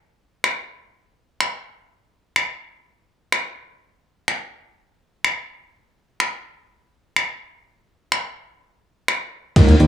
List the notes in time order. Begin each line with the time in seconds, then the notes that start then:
0.44 finger snap
1.41 finger snap
2.36 finger snap
3.32 finger snap
4.28 finger snap
5.25 finger snap
6.20 finger snap
7.16 finger snap
8.12 finger snap
9.08 finger snap
9.56 D#2, kick, snare, closed hi-hat, crash
9.68 closed hi-hat
9.80 D#2, closed hi-hat